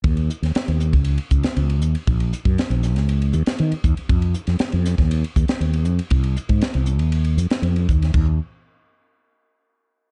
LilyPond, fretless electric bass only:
\new Staff \with { instrumentName = "Fretless electric bass" } { \clef bass \time 4/4 \key ees \dorian \tempo 4 = 118 ees,8 r16 ees,16 r16 ees,8 des,8 r16 des,16 r16 des,8 ees,16 r16 | bes,,8 r16 ges,16 r16 bes,,8 des,8. ees,16 r16 ees16 r16 ees,16 r16 | f,8 r16 f,16 r16 f,8 ees,8 r16 ees,16 r16 ees,8 f,16 r16 | c,8 r16 aes,16 r16 c,8 ees,8. f,16 r16 f,8 ees,8 |
ees,8 r2. r8 | }